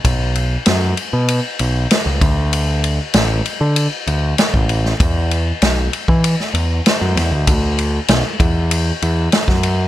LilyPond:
<<
  \new Staff \with { instrumentName = "Picked electric bass" } { \clef bass \time 4/4 \key d \major \tempo 4 = 97 b,,4 fis,8 r16 b,8 r16 b,,8 r16 cis,16 d,8~ | d,4 a,,8 r16 d8 r16 d,8 r16 a,,8. | e,4 b,,8 r16 e8 r16 e,8 r16 fis,16 e,16 d,16 | d,4 b,,16 r16 e,4 e,8 r16 fis,8. | }
  \new DrumStaff \with { instrumentName = "Drums" } \drummode { \time 4/4 <bd cymr>8 cymr8 <cymr sn>8 cymr8 cymr8 cymr8 <cymr sn>8 <bd cymr>8 | cymr8 cymr8 <cymr sn>8 cymr8 cymr8 cymr8 <cymr sn>16 bd16 cymr16 sn16 | <bd cymr>8 cymr8 <cymr sn>8 cymr16 bd16 cymr16 sn16 cymr8 <cymr sn>8 <cymr sn>8 | <bd cymr>8 cymr8 <cymr sn>8 <bd cymr>8 cymr8 cymr8 <cymr sn>16 <bd sn>16 cymr8 | }
>>